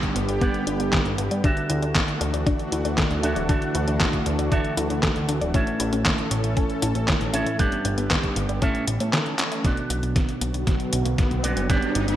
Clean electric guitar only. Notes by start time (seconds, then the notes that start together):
Already playing: G2 B3 D4 G4 D5
0.41 G2 B3 D4 G4 D5
1.44 D3 D4 F#4 A4 E5
3.23 D3 D4 F#4 A4 E5
3.49 D3 D4 F#4 A4 E5
4.51 D3 D4 F#4 A4 E5
5.54 A2 C#4 E4 A4 E5
7.33 C#4 E4 A4 E5
7.59 G2 B3 D4 G4 D5
8.61 A2 C#4 E4 A4 E5
9.64 B2 B3 D4 F#4 D5
11.43 G2 B3 D4 F#4 D5
11.69 G2 B3 D4 G4 D5